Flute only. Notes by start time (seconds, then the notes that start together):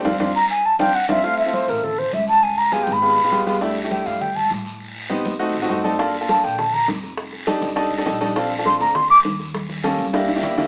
0.36 A#5
0.50 G#5
0.66 A5
0.80 G5
0.95 F#5
1.10 E5
1.24 F5
1.39 E5
1.54 C5
1.69 A#4
1.84 A4
1.99 C5
2.14 E5
2.28 A5
2.43 G#5
2.58 A#5
2.73 G#5
2.83 G5
2.93 B5
3.92 G5
4.06 F5
4.21 G5
4.36 A5
6.30 A5
6.44 G5
6.59 A5
6.73 A#5
8.66 C6
8.81 A#5
8.95 C6
9.10 D6